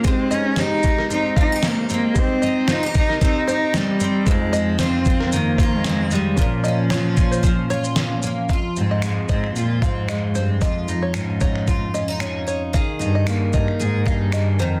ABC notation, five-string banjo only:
X:1
M:4/4
L:1/16
Q:"Swing 16ths" 1/4=113
K:Fm
V:1 name="Five-string banjo"
z2 e z c z2 B2 z f z4 z | z2 e z c z2 B2 z c z4 z | z2 e z c z2 B2 z f z4 z | z2 e z d z2 c2 z d z4 z |
f2 z e z2 e2 z2 f2 e z c z | e2 z d z2 d2 z2 e2 z2 d z | f2 z e z2 e2 z2 f2 e z c z |]